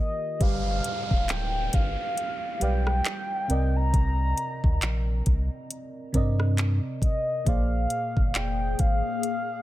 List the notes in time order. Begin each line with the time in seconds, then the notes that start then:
Already playing: D#3 A#3 F4 G4 A#4 D#5
0.39 G1 G3 G4 B4 D5 F5, kick, closed hi-hat, downlifter
0.44 F5
0.84 closed hi-hat
1.11 D#1, kick
1.29 D1 G5, clap, closed hi-hat
1.73 G1 F5, kick, closed hi-hat
2.18 closed hi-hat
2.60 B1 G3 G4 B4 D5 G5, closed hi-hat
2.64 F5
2.87 cross-stick
3.05 clap, closed hi-hat
3.48 C2 C3 C4 A#4 D5, closed hi-hat
3.52 D#5
3.76 A#5
3.94 kick, closed hi-hat
4.38 closed hi-hat
4.64 D2, kick
4.82 A#1, clap, closed hi-hat
5.26 C2, kick, closed hi-hat
5.71 closed hi-hat
6.13 G2 C3 C4 A#4 D5, kick, closed hi-hat
6.17 D#5
6.40 cross-stick
6.58 clap, closed hi-hat
7.02 D#5, kick, closed hi-hat
7.45 A#1 A#2 A#3 G#4 C5 F5, kick, closed hi-hat
7.49 D5
7.90 closed hi-hat
8.17 G1, kick
8.35 F1 G5, clap, closed hi-hat
8.79 G#1 F5, kick, closed hi-hat
9.23 closed hi-hat